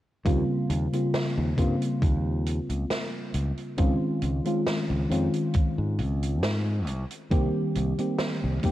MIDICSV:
0, 0, Header, 1, 4, 480
1, 0, Start_track
1, 0, Tempo, 882353
1, 139, Time_signature, 4, 2, 24, 8
1, 4741, End_track
2, 0, Start_track
2, 0, Title_t, "FM electric piano"
2, 0, Program_c, 0, 5
2, 134, Note_on_c, 0, 49, 89
2, 136, Note_on_c, 0, 55, 78
2, 139, Note_on_c, 0, 58, 83
2, 141, Note_on_c, 0, 60, 83
2, 142, Note_on_c, 0, 65, 95
2, 232, Control_c, 0, 64, 127
2, 474, Note_off_c, 0, 49, 0
2, 475, Note_off_c, 0, 55, 0
2, 477, Note_off_c, 0, 58, 0
2, 478, Note_off_c, 0, 60, 0
2, 478, Note_off_c, 0, 65, 0
2, 504, Note_on_c, 0, 49, 72
2, 506, Note_on_c, 0, 55, 65
2, 508, Note_on_c, 0, 58, 60
2, 510, Note_on_c, 0, 60, 62
2, 511, Note_on_c, 0, 65, 79
2, 712, Note_off_c, 0, 49, 0
2, 713, Note_off_c, 0, 55, 0
2, 714, Note_off_c, 0, 58, 0
2, 715, Note_off_c, 0, 60, 0
2, 716, Note_off_c, 0, 65, 0
2, 850, Note_on_c, 0, 49, 83
2, 855, Note_on_c, 0, 55, 75
2, 859, Note_on_c, 0, 58, 76
2, 862, Note_on_c, 0, 60, 74
2, 866, Note_on_c, 0, 65, 90
2, 2028, Note_off_c, 0, 49, 0
2, 2030, Note_off_c, 0, 55, 0
2, 2032, Note_off_c, 0, 58, 0
2, 2034, Note_off_c, 0, 60, 0
2, 2036, Note_off_c, 0, 65, 0
2, 2055, Note_on_c, 0, 51, 87
2, 2056, Note_on_c, 0, 56, 80
2, 2058, Note_on_c, 0, 60, 82
2, 2060, Note_on_c, 0, 61, 80
2, 2062, Note_on_c, 0, 65, 100
2, 2064, Control_c, 0, 64, 0
2, 2158, Control_c, 0, 64, 127
2, 2394, Note_off_c, 0, 51, 0
2, 2395, Note_off_c, 0, 56, 0
2, 2396, Note_off_c, 0, 60, 0
2, 2397, Note_off_c, 0, 61, 0
2, 2398, Note_off_c, 0, 65, 0
2, 2420, Note_on_c, 0, 51, 70
2, 2423, Note_on_c, 0, 56, 67
2, 2425, Note_on_c, 0, 60, 63
2, 2427, Note_on_c, 0, 61, 65
2, 2428, Note_on_c, 0, 65, 80
2, 2630, Note_off_c, 0, 51, 0
2, 2632, Note_off_c, 0, 56, 0
2, 2633, Note_off_c, 0, 60, 0
2, 2634, Note_off_c, 0, 61, 0
2, 2634, Note_off_c, 0, 65, 0
2, 2768, Note_on_c, 0, 51, 82
2, 2773, Note_on_c, 0, 56, 74
2, 2777, Note_on_c, 0, 60, 79
2, 2782, Note_on_c, 0, 61, 74
2, 2784, Note_on_c, 0, 65, 89
2, 3720, Note_off_c, 0, 51, 0
2, 3723, Note_off_c, 0, 56, 0
2, 3725, Note_off_c, 0, 60, 0
2, 3727, Note_off_c, 0, 61, 0
2, 3728, Note_off_c, 0, 65, 0
2, 3746, Control_c, 0, 64, 0
2, 3843, Control_c, 0, 64, 127
2, 3973, Note_on_c, 0, 51, 88
2, 3975, Note_on_c, 0, 55, 84
2, 3977, Note_on_c, 0, 58, 84
2, 3980, Note_on_c, 0, 60, 84
2, 3981, Note_on_c, 0, 67, 99
2, 4314, Note_off_c, 0, 51, 0
2, 4315, Note_off_c, 0, 55, 0
2, 4316, Note_off_c, 0, 58, 0
2, 4317, Note_off_c, 0, 60, 0
2, 4317, Note_off_c, 0, 67, 0
2, 4343, Note_on_c, 0, 51, 73
2, 4344, Note_on_c, 0, 55, 62
2, 4345, Note_on_c, 0, 58, 66
2, 4348, Note_on_c, 0, 60, 69
2, 4349, Note_on_c, 0, 67, 79
2, 4552, Note_off_c, 0, 51, 0
2, 4552, Note_off_c, 0, 55, 0
2, 4553, Note_off_c, 0, 58, 0
2, 4554, Note_off_c, 0, 60, 0
2, 4555, Note_off_c, 0, 67, 0
2, 4691, Note_on_c, 0, 51, 84
2, 4694, Note_on_c, 0, 55, 75
2, 4699, Note_on_c, 0, 58, 73
2, 4702, Note_on_c, 0, 60, 77
2, 4706, Note_on_c, 0, 67, 96
2, 4741, Note_off_c, 0, 51, 0
2, 4741, Note_off_c, 0, 55, 0
2, 4741, Note_off_c, 0, 58, 0
2, 4741, Note_off_c, 0, 60, 0
2, 4741, Note_off_c, 0, 67, 0
2, 4741, End_track
3, 0, Start_track
3, 0, Title_t, "Fingered electric bass"
3, 0, Program_c, 1, 33
3, 138, Note_on_c, 1, 39, 91
3, 229, Note_off_c, 1, 39, 0
3, 379, Note_on_c, 1, 39, 74
3, 469, Note_off_c, 1, 39, 0
3, 748, Note_on_c, 1, 39, 86
3, 826, Note_off_c, 1, 39, 0
3, 860, Note_on_c, 1, 43, 77
3, 950, Note_off_c, 1, 43, 0
3, 1098, Note_on_c, 1, 39, 75
3, 1406, Note_off_c, 1, 39, 0
3, 1467, Note_on_c, 1, 37, 77
3, 1545, Note_off_c, 1, 37, 0
3, 1819, Note_on_c, 1, 37, 78
3, 1909, Note_off_c, 1, 37, 0
3, 2059, Note_on_c, 1, 37, 91
3, 2149, Note_off_c, 1, 37, 0
3, 2297, Note_on_c, 1, 37, 76
3, 2388, Note_off_c, 1, 37, 0
3, 2665, Note_on_c, 1, 37, 87
3, 2745, Note_off_c, 1, 37, 0
3, 2777, Note_on_c, 1, 41, 75
3, 2868, Note_off_c, 1, 41, 0
3, 3146, Note_on_c, 1, 44, 76
3, 3258, Note_on_c, 1, 37, 89
3, 3266, Note_off_c, 1, 44, 0
3, 3496, Note_off_c, 1, 37, 0
3, 3496, Note_on_c, 1, 44, 93
3, 3739, Note_off_c, 1, 44, 0
3, 3739, Note_on_c, 1, 36, 76
3, 3829, Note_off_c, 1, 36, 0
3, 3978, Note_on_c, 1, 36, 93
3, 4069, Note_off_c, 1, 36, 0
3, 4221, Note_on_c, 1, 36, 77
3, 4310, Note_off_c, 1, 36, 0
3, 4589, Note_on_c, 1, 36, 87
3, 4667, Note_off_c, 1, 36, 0
3, 4698, Note_on_c, 1, 39, 78
3, 4741, Note_off_c, 1, 39, 0
3, 4741, End_track
4, 0, Start_track
4, 0, Title_t, "Drums"
4, 139, Note_on_c, 9, 36, 105
4, 140, Note_on_c, 9, 42, 76
4, 194, Note_off_c, 9, 36, 0
4, 194, Note_off_c, 9, 42, 0
4, 380, Note_on_c, 9, 42, 81
4, 434, Note_off_c, 9, 42, 0
4, 508, Note_on_c, 9, 42, 60
4, 562, Note_off_c, 9, 42, 0
4, 619, Note_on_c, 9, 42, 80
4, 620, Note_on_c, 9, 38, 112
4, 674, Note_off_c, 9, 38, 0
4, 674, Note_off_c, 9, 42, 0
4, 859, Note_on_c, 9, 36, 53
4, 860, Note_on_c, 9, 42, 84
4, 913, Note_off_c, 9, 36, 0
4, 915, Note_off_c, 9, 42, 0
4, 988, Note_on_c, 9, 42, 64
4, 1042, Note_off_c, 9, 42, 0
4, 1099, Note_on_c, 9, 36, 101
4, 1101, Note_on_c, 9, 42, 74
4, 1153, Note_off_c, 9, 36, 0
4, 1155, Note_off_c, 9, 42, 0
4, 1340, Note_on_c, 9, 42, 85
4, 1395, Note_off_c, 9, 42, 0
4, 1467, Note_on_c, 9, 42, 59
4, 1522, Note_off_c, 9, 42, 0
4, 1580, Note_on_c, 9, 38, 109
4, 1581, Note_on_c, 9, 42, 80
4, 1634, Note_off_c, 9, 38, 0
4, 1635, Note_off_c, 9, 42, 0
4, 1817, Note_on_c, 9, 42, 86
4, 1871, Note_off_c, 9, 42, 0
4, 1946, Note_on_c, 9, 42, 59
4, 2000, Note_off_c, 9, 42, 0
4, 2055, Note_on_c, 9, 42, 84
4, 2059, Note_on_c, 9, 36, 109
4, 2110, Note_off_c, 9, 42, 0
4, 2113, Note_off_c, 9, 36, 0
4, 2294, Note_on_c, 9, 42, 71
4, 2349, Note_off_c, 9, 42, 0
4, 2423, Note_on_c, 9, 42, 53
4, 2477, Note_off_c, 9, 42, 0
4, 2538, Note_on_c, 9, 38, 124
4, 2538, Note_on_c, 9, 42, 83
4, 2592, Note_off_c, 9, 38, 0
4, 2592, Note_off_c, 9, 42, 0
4, 2782, Note_on_c, 9, 42, 80
4, 2836, Note_off_c, 9, 42, 0
4, 2902, Note_on_c, 9, 42, 58
4, 2957, Note_off_c, 9, 42, 0
4, 3012, Note_on_c, 9, 42, 89
4, 3019, Note_on_c, 9, 36, 111
4, 3066, Note_off_c, 9, 42, 0
4, 3073, Note_off_c, 9, 36, 0
4, 3257, Note_on_c, 9, 42, 89
4, 3311, Note_off_c, 9, 42, 0
4, 3388, Note_on_c, 9, 42, 68
4, 3442, Note_off_c, 9, 42, 0
4, 3497, Note_on_c, 9, 38, 117
4, 3498, Note_on_c, 9, 42, 86
4, 3552, Note_off_c, 9, 38, 0
4, 3552, Note_off_c, 9, 42, 0
4, 3737, Note_on_c, 9, 42, 75
4, 3791, Note_off_c, 9, 42, 0
4, 3866, Note_on_c, 9, 42, 62
4, 3920, Note_off_c, 9, 42, 0
4, 3978, Note_on_c, 9, 42, 89
4, 3979, Note_on_c, 9, 36, 116
4, 4032, Note_off_c, 9, 42, 0
4, 4033, Note_off_c, 9, 36, 0
4, 4218, Note_on_c, 9, 42, 78
4, 4272, Note_off_c, 9, 42, 0
4, 4344, Note_on_c, 9, 42, 53
4, 4398, Note_off_c, 9, 42, 0
4, 4453, Note_on_c, 9, 38, 124
4, 4456, Note_on_c, 9, 42, 80
4, 4507, Note_off_c, 9, 38, 0
4, 4510, Note_off_c, 9, 42, 0
4, 4693, Note_on_c, 9, 42, 80
4, 4699, Note_on_c, 9, 36, 59
4, 4741, Note_off_c, 9, 36, 0
4, 4741, Note_off_c, 9, 42, 0
4, 4741, End_track
0, 0, End_of_file